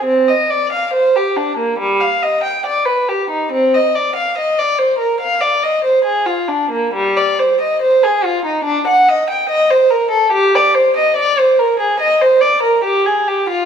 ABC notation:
X:1
M:4/4
L:1/16
Q:1/4=70
K:Cm
V:1 name="Violin"
C e d f c G D B, G, f e g d =B G E | C e d f e d c B f d e c A F D B, | G, d c e c A F E D ^f e g e c B =A | G d c e d c B A e c d B G A G F |]